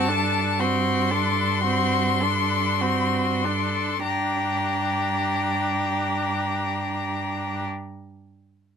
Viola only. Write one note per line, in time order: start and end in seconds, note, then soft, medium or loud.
0.08 0.61 D4 soft
0.60 1.13 C4 soft
1.11 1.65 D4 soft
1.67 2.24 C4 soft
2.22 2.83 D4 soft
2.82 3.45 C4 soft
3.43 4.06 D4 soft
4.07 7.66 D4 soft